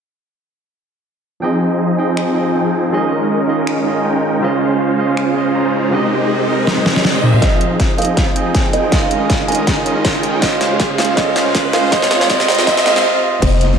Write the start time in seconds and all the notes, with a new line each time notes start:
1.40 F3 C4 D#4 G#4 D#5 G5
1.44 D#5
1.97 F3 C4 G#4 D#5 G5
2.17 finger snap
2.34 F3 C4 G#4 G5
2.38 D#5
2.55 F3 C4 D#4 G#4 G5
2.90 D#3 G#3 C#4 D#4 F4 G#4 A#4 D#5
3.47 D#3 C#4 F4 G#4 D#5
3.67 finger snap
3.84 D#3 C#4 F4 G#4
3.88 D#5
4.05 G#3 C#4 D#4 A#4 G5
4.40 C#3 G#3 C#4 F4 C5 F5, riser
4.44 D#5
4.98 C#3 C#4 F4 C5 D#5
5.17 finger snap
5.34 C#3 C#4 F4 C5
5.38 D#5
5.55 G#3 C#4 F4 C5 A#5
5.90 C3 G#3 C4 D#4 G4 A#4 C5 D#5
5.94 D#5
6.47 C3 C4 G4 A#4 D#5
6.67 snare
6.78 high tom
6.86 snare
6.96 snare
7.05 snare
7.15 G#3 D#4 G4 C5 D#5
7.22 C3 C4 G4 A#4 D#5, mid tom
7.34 mid tom
7.40 F3 C4 G#4 D#5 G5, kick, snare, closed hi-hat, riser
7.44 D#5
7.61 closed hi-hat
7.80 kick, snare, closed hi-hat
7.97 F3 C4 G#4 D#5 F5 G5, closed hi-hat
8.02 closed hi-hat
8.05 closed hi-hat
8.17 kick, snare, closed hi-hat
8.34 F3 C4 G#4 G5, closed hi-hat
8.38 D#5
8.55 C4 D#4 G#5, kick, snare, closed hi-hat
8.73 D#5, closed hi-hat
8.90 D#3 G#3 C#4 D#4 F4 G#4 A#4 D#5 F5, kick, snare, closed hi-hat
9.03 F5
9.11 closed hi-hat
9.30 kick, snare, closed hi-hat
9.47 D#3 C#4 F4 G#4 D#5 G#5, closed hi-hat
9.52 closed hi-hat
9.55 closed hi-hat
9.67 kick, snare, closed hi-hat
9.84 D#3 C#4 F4 G#4 D#5, closed hi-hat
10.05 kick, snare, closed hi-hat
10.23 closed hi-hat
10.40 C#3 C#4 F4 C5 D#5, kick, snare, closed hi-hat
10.61 snare, closed hi-hat
10.80 kick, snare, closed hi-hat
10.97 C#3 C#4 F4 C5 D#5 F5, snare, closed hi-hat
11.02 closed hi-hat
11.05 closed hi-hat
11.15 C#3 G#3 C#4 F4 C5 D#5 F5, kick, snare, closed hi-hat
11.19 D#5
11.36 snare, closed hi-hat
11.55 kick, snare, closed hi-hat
11.72 C#3 C#4 F4 C5 D#5 F5, snare, closed hi-hat
11.90 C3 G#3 C4 F4 C5 D#5 F5, kick, snare, closed hi-hat
11.94 D#5
12.02 snare
12.11 snare, closed hi-hat
12.21 snare
12.28 C3 G#3 C4 F4 C5 D#5 F5, kick, snare, closed hi-hat
12.40 snare
12.48 snare, closed hi-hat
12.52 closed hi-hat
12.55 closed hi-hat
12.59 snare
12.65 C3 G#3 C4 F4 C5 D#5 F5, kick, snare, closed hi-hat
12.69 D#5
12.77 snare
12.84 C3 G#3 C4 F4 C5 D#5 F5, snare, closed hi-hat
12.96 snare
13.42 F1 G#3 D#4 F4 C5 D#5, kick, closed hi-hat, crash, downlifter
13.61 closed hi-hat